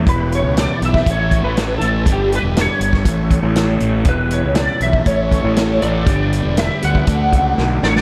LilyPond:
<<
  \new Staff \with { instrumentName = "Lead electric guitar" } { \time 4/4 \key a \mixolydian \tempo 4 = 120 b'8 cis''8 d''8 e''8 \tuplet 3/2 { cis''4 b'8~ b'8 a'4 } | g'8 b'8 cis''2~ cis''8 r8 | b'8 cis''8 d''8 e''8 cis''4. d''8~ | d''4 e''8 fis''2 d''32 cis''32 d''16 | }
  \new Staff \with { instrumentName = "Tonewheel organ" } { \time 4/4 \key a \mixolydian << { g'2 a'2 | b'2 cis''2 | b'2 cis''2 | d''2 d''2 | } \\ { b2 cis'2 | d'2 e'2~ | e'1 | g'2 fis'2 | } >> }
  \new Staff \with { instrumentName = "Tonewheel organ" } { \time 4/4 \key a \mixolydian e1 | g2 a2 | g2 a2 | b2 a2 | }
  \new Staff \with { instrumentName = "Distorted electric guitar" } { \clef bass \time 4/4 \key a \mixolydian <e, b, e>4. <e, b, e>8 <a, e a>4. <a, e a>8 | <g, d g>4. <g, d g>8 <a, e a>4. <a, e a>8 | <e, b, e>4. <e, b, e>8 <a, e a>4. <a, e a>8 | <g, d g>4. <g, d g>8 <d a d'>4. <d a d'>8 | }
  \new Staff \with { instrumentName = "Fingered electric bass" } { \clef bass \time 4/4 \key a \mixolydian e,,8. cis,8 r16 b,,8 a,,8. a,,8. a,,8 | g,,8. e,,8 r16 g,,8 a,,8. a,,8. a,,8 | e,,8. cis,8 r16 b,,8 a,,8. a,,8. a,,8 | g,,8. e,,8 r16 d,8 d,8 cis,8 b,,8 a,,8 | }
  \new DrumStaff \with { instrumentName = "Drums" } \drummode { \time 4/4 <hh bd>8 hh8 <hh sn>8 hh16 <bd sn>16 <hh bd>8 <hh bd>8 <hh sn>8 hh8 | <hh bd>8 hh8 <hh sn>8 hh16 <bd sn>16 <hh bd>8 <hh bd>8 <hh sn>8 hh8 | <hh bd>8 hh8 <hh sn>8 hh16 bd16 <hh bd>8 <hh bd>8 <hh sn>8 hh8 | <hh bd>8 hh8 <hh sn>8 hh16 bd16 <hh bd>8 <hh bd>8 sn8 sn16 sn16 | }
>>